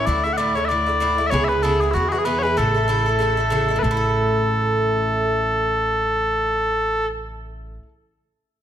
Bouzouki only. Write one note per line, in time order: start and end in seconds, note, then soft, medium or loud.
0.07 0.25 A2 medium
0.07 0.25 D3 medium
0.07 0.24 A3 medium
0.07 0.23 E4 medium
0.24 0.37 D3 soft
0.24 0.38 A3 soft
0.24 0.38 E4 soft
0.38 0.56 A2 medium
0.38 0.56 D3 medium
0.38 0.56 A3 medium
0.38 0.54 E4 medium
0.55 0.69 D3 soft
0.55 0.70 A3 medium
0.55 0.69 E4 soft
0.69 0.87 A2 soft
0.69 0.88 D3 medium
0.69 0.87 A3 medium
0.69 0.85 E4 medium
0.86 1.00 D3 soft
0.86 1.01 A3 soft
0.86 1.00 E4 medium
1.00 1.19 A2 medium
1.00 1.19 D3 medium
1.00 1.19 A3 medium
1.00 1.17 E4 medium
1.18 1.32 D3 soft
1.18 1.32 A3 soft
1.18 1.32 E4 medium
1.31 1.50 C#3 medium
1.31 1.50 B3 medium
1.31 1.50 E4 medium
1.31 1.48 G#4 medium
1.49 1.62 B3 soft
1.49 1.63 E4 soft
1.49 1.63 G#4 soft
1.63 1.81 C#3 medium
1.63 1.82 B3 medium
1.63 1.81 E4 medium
1.63 1.79 G#4 medium
1.81 1.93 B3 soft
1.81 1.94 E4 soft
1.81 1.94 G#4 medium
1.93 2.12 D3 medium
1.93 2.13 B3 medium
1.93 2.12 E4 medium
1.93 2.11 G#4 medium
2.12 2.25 B3 soft
2.12 2.25 E4 soft
2.12 2.26 G#4 medium
2.25 2.44 D3 medium
2.25 2.44 B3 medium
2.25 2.44 E4 medium
2.25 2.42 G#4 medium
2.43 2.57 B3 soft
2.43 2.57 E4 soft
2.43 2.57 G#4 medium
2.57 2.75 C#3 medium
2.57 2.75 A3 medium
2.57 2.75 E4 medium
2.57 2.73 A4 medium
2.75 2.88 A3 soft
2.75 2.88 E4 soft
2.75 2.88 A4 soft
2.88 3.06 C#3 medium
2.88 3.07 A3 medium
2.88 3.07 E4 medium
2.88 3.05 A4 medium
3.06 3.19 A3 soft
3.06 3.20 E4 soft
3.06 3.19 A4 medium
3.19 3.37 C#3 medium
3.19 3.38 A3 medium
3.19 3.37 E4 medium
3.19 3.36 A4 medium
3.37 3.50 A3 soft
3.37 3.51 E4 soft
3.37 3.51 A4 medium
3.50 3.69 C#3 medium
3.50 3.69 A3 medium
3.50 3.69 E4 medium
3.50 3.67 A4 medium
3.68 3.83 A3 soft
3.68 3.83 E4 soft
3.68 3.82 A4 medium
3.76 7.74 C#3 medium
3.84 7.82 A3 medium
3.91 7.86 E4 medium
3.97 7.89 A4 medium